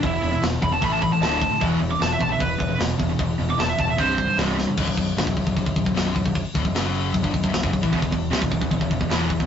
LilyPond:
<<
  \new Staff \with { instrumentName = "Lead electric guitar" } { \time 4/4 \key b \phrygian \tempo 4 = 152 e'4 r8 b''16 a''16 b''16 a''16 b''16 a''16 a''4 | r8. d'''16 a''16 e''16 a''16 e''16 b'4 r4 | r8. d'''16 a''16 e''16 a''16 e''16 c''4 r4 | r1 |
r1 | r1 | }
  \new Staff \with { instrumentName = "Distorted electric guitar" } { \clef bass \time 4/4 \key b \phrygian <e, b,>8 <e, b,>16 <e, b,>16 <e, b,>8 <e, b,>16 <e, b,>16 <a, e a>8 <a, e>16 <a, e>16 <d, a, d>8 <d, a,>16 <d, a,>16 | <e, b, e>8 <e, b,>16 <e, b,>16 <e, b,>8 <e, b,>16 <e, b,>16 <e, b,>8 <e, b,>16 <e, b,>16 <e, b,>8 <e, b,>16 <e, b,>16 | <e, b,>8 <e, b,>16 <e, b,>16 <e, b,>8 <e, b,>16 <e, b,>16 <c, g, c>8 <c, g,>16 <c, g,>16 <c, g, c>8 <c, g,>16 <c, g,>16 | r1 |
r1 | <e, b,>16 <e, b,>16 <e, b,>8 <c g>16 <e, b,>16 <e, b,>16 <e, b,>16 <e, b,>16 <e, b,>16 <e, b,>16 <e, b,>16 <e, b, e>8 <e, b,>16 <e, b,>16 | }
  \new Staff \with { instrumentName = "Distorted electric guitar" } { \clef bass \time 4/4 \key b \phrygian <e, b,>8 <e, b,>16 <e, b,>16 <e, b,>8 <e, b,>16 <e, b,>16 <a, e a>8 <a, e>16 <a, e>16 <d, a, d>8 <d, a,>16 <d, a,>16 | <e, b, e>8 <e, b,>16 <e, b,>16 <e, b,>8 <e, b,>16 <e, b,>16 <e, b,>8 <e, b,>16 <e, b,>16 <e, b,>8 <e, b,>16 <e, b,>16 | <e, b,>8 <e, b,>16 <e, b,>16 <e, b,>8 <e, b,>16 <e, b,>16 <c, g, c>8 <c, g,>16 <c, g,>16 <c, g, c>8 <c, g,>16 <c, g,>16 | <b,, fis,>16 <b,, fis,>16 <b,, fis,>8 <g, d>16 <b,, fis,>16 <b,, fis,>16 <b,, fis,>16 <b,, fis,>16 <b,, fis,>16 <b,, fis,>16 <b,, fis,>16 <b,, fis, b,>8 <b,, fis,>16 <b,, fis,>16~ |
<b,, fis,>16 r16 <d, a,>16 <b,, fis,>16 <fis, cis fis>4 <b,, fis,>16 <g, d>16 <b,, fis,>16 <b,, fis,>16 <b,, fis,>16 <fis, cis>16 <b,, fis,>16 <a, e>16 | <e, b,>16 <e, b,>16 <e, b,>8 <c g>16 <e, b,>16 <e, b,>16 <e, b,>16 <e, b,>16 <e, b,>16 <e, b,>16 <e, b,>16 <e, b, e>8 <e, b,>16 <e, b,>16 | }
  \new Staff \with { instrumentName = "Picked electric bass" } { \clef bass \time 4/4 \key b \phrygian e,,8 e,,8 e,,8 e,,8 a,,4 d,,4 | e,,8 e,,8 e,,8 b,,8 e,,8 e,,8 e,,8 e,,8 | e,,8 e,,8 e,,8 e,,8 c,,4 c,,4 | b,,,16 b,,,16 b,,,8 g,,16 b,,,16 b,,,16 b,,,16 b,,,16 b,,,16 b,,,16 b,,,16 b,,,8 b,,,16 b,,,16~ |
b,,,16 r16 d,,16 b,,,16 fis,,4 b,,,16 g,,16 b,,,16 b,,,16 b,,,16 fis,,16 b,,,16 a,,16 | e,,16 e,,16 e,,8 c,16 e,,16 e,,16 e,,16 e,,16 e,,16 e,,16 e,,16 e,,8 e,,16 e,,16 | }
  \new DrumStaff \with { instrumentName = "Drums" } \drummode { \time 4/4 <hho bd>8 hho8 <hho sn>8 <hho bd>8 <hho bd>8 <hho bd>8 <hho sn>8 <hho bd>8 | <hho bd>8 hho8 <hho sn>8 <hho bd>8 <hho bd>8 <hho bd>8 <hho sn>8 <hho bd>8 | <hho bd>8 hho8 sn8 <hho bd>8 <hho bd>8 <hho bd>8 <hho sn>8 sn8 | <cymc bd>16 bd16 <hho bd>8 <hho sn>16 bd16 <hho bd>16 bd16 <hho bd>16 bd16 <hho bd>16 bd16 <hho sn>8 <hho bd>16 bd16 |
<hho bd>8 <hho bd>16 bd16 <hho sn>8 hho8 <hho bd>16 bd16 <hho bd>16 bd16 <hho sn>16 bd16 <hho bd>16 bd16 | <hho bd>16 bd16 <hho bd>8 <hho sn>16 bd16 <hho bd>16 bd16 <hho bd>16 bd16 <hho bd>16 bd16 <hho sn>8 <hho bd>16 bd16 | }
>>